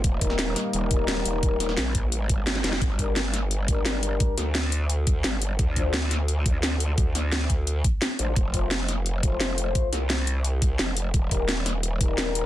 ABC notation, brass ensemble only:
X:1
M:4/4
L:1/8
Q:1/4=173
K:Gm
V:1 name="Brass ensemble"
z [G,EB] z3 [G,EB]3- | [G,EB] [G,EB] z4 z [G,EB] | z [G,DB] z3 [G,DB]3- | [G,DB] [G,DB] z6 |
z [F,Dc] z6 | z6 z [F,Dc] | z [A,Fc] z3 [A,Fc]3- | [A,Fc] [A,Fc] z6 |
z [G,EB] z3 [G,EB]3 |]